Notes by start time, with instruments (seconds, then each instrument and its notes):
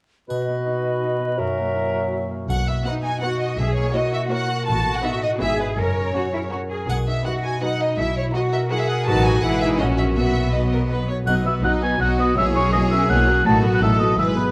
0.29 bassoon B2, harp B2, clarinet F#4, cor anglais B4, flute D#5, triangle
0.48 harp B3
0.66 harp D#4
0.84 harp F#4
1.02 harp D#4
1.20 harp B3
1.38 harp F#2, bassoon F#3, cor anglais A#4, flute E5
1.57 harp A#3
1.76 harp E4
1.93 harp F#4
2.12 harp E4
2.31 harp A#3
2.48 double bass section B1, harp B2, violin section F#5, triangle
2.66 harp B3, violin section E5
2.85 viola section B3 D#4, cello section D#4, harp D#4, violin section F#4 B4 F#5
3.03 harp F#4, violin section G#5
3.20 viola section B3 D#4, cello section F#4, violin section F#4 B4 F#5, harp B4
3.39 harp F#4, violin section D#5
3.57 double bass section B1, harp B2, cello section G#4, violin section E5
3.75 harp A#3, violin section C#5
3.93 viola section A#3 E4, harp E4, violin section F#4 C#5 D#5, cello section F#4
4.12 harp F#4, violin section E5
4.29 viola section A#3 E4, violin section F#4 C#5 F#5, harp A#4
4.49 harp F#4
4.66 double bass section A1, harp A2, cello section F#4, violin section A5
4.85 harp B3
4.95 violin section F#5
5.03 viola section B3 D#4, harp D#4, violin section F#4 B4 E5
5.21 harp F#4, violin section D#5
5.39 double bass section G#1, harp G#2, viola section B3, violin section E4 B4 E5, cello section G#4
5.59 harp E4 G#4, violin section B4
5.76 double bass section F#1, harp F#2, cello section A#4, violin section C#5
5.96 harp C#4
6.14 viola section F#3 C#4, violin section F#4 A#4, harp F#4, cello section F#4
6.33 cello section E4, harp A#4
6.51 viola section F#3 C#4, cello section F#4, violin section F#4 A#4, harp C#5
6.70 cello section G#4, harp A#4
6.88 double bass section B1, harp B2, violin section F#5, triangle
7.07 harp D#4, violin section E5
7.25 viola section F#3 D#4, cello section F#4, violin section F#4 B4 F#5, harp F#4
7.44 harp B4, violin section G#5
7.61 viola section F#3 D#4, cello section D#4, violin section F#4 B4 F#5, harp D#5
7.81 harp B4, violin section D#5
7.97 double bass section B1, harp B2, cello section E4, violin section E5
8.16 harp E4, violin section C#5
8.34 viola section F#3 E4, harp F#4, violin section F#4 A#4 D#5, cello section F#4
8.52 harp A#4, violin section E5
8.70 viola section F#3 E4, violin section F#4 A#4 F#5, cello section G#4, harp E5
8.79 violin section E5
8.85 harp A#4, violin section F#5
9.06 double bass section A1, harp A2, viola section F#3 D#4, cello section F#4, violin section F#4 B4 A5
9.24 harp F#4 B4, violin section G#5
9.42 double bass section G#1, harp G#2, viola section E3 E4, cello section E4, violin section G#4 B4 F#5
9.60 viola section D#4, harp G#4 B4, violin section E5
9.78 double bass section A#1, harp A#2, viola section F#3 C#4, cello section C#4, violin section F#4 D#5
9.97 harp F#4 C#5, violin section E5
10.16 double bass section B1, harp B2, viola section F#3 B3, cello section B3, violin section F#4 E5
10.35 harp F#3
10.53 viola section F#3 B3, harp F#4, violin section B4 D#5
10.72 violin section A#4, harp B4
10.91 harp F#4, violin section B4
11.09 harp B4, violin section C#5
11.26 double bass section B1, harp B2, cello section B2, viola section F#3 D#4, violin section D#5, cor anglais F#5, triangle
11.45 harp F#3, viola section B3 F#4, violin section B4, cor anglais E5
11.63 double bass section B1, cello section B2, viola section F#3 D#4, violin section D#4 D#5, harp D#4, cor anglais F#5
11.82 viola section B3 F#4, violin section B4, harp B4, cor anglais G#5
11.99 double bass section B1, cello section B2, viola section F#3 D#4, violin section F#4 D#5, harp F#4, cor anglais F#5
12.19 viola section B3 F#4, violin section B4, harp B4, cor anglais D#5
12.35 double bass section B1, cello section B2, harp B2, viola section A#3 E4, violin section G#4 C#5, cor anglais E5
12.55 harp F#3, viola section C#4 F#4, violin section A#4, cor anglais C#5
12.72 double bass section B1, cello section B2, viola section A#3 E4, harp E4, violin section C#5, cor anglais D#5
12.91 viola section C#4 F#4, violin section A#4, harp A#4, cor anglais E5
13.09 double bass section B1, cello section B2, viola section A#3 E4, harp F#4, violin section C#5, cor anglais F#5
13.27 viola section C#4 F#4, harp A#4, violin section A#4
13.45 double bass section A1, cello section A2, harp A2, viola section A3 D#4, violin section F#4 A4, cor anglais A5
13.64 harp F#3, viola section B3 F#4, violin section B4
13.74 cor anglais F#5
13.81 double bass section A1, cello section A2, viola section A3 D#4, harp D#4, violin section A4, cor anglais E5
13.99 viola section B3 F#4, harp B4, violin section B4, cor anglais D#5
14.17 double bass section G#1, harp G#2, cello section G#2, viola section G#3 E4, violin section G#4 B4, cor anglais E5
14.36 viola section B3 G#4, harp E4 B4, cor anglais B4, violin section B4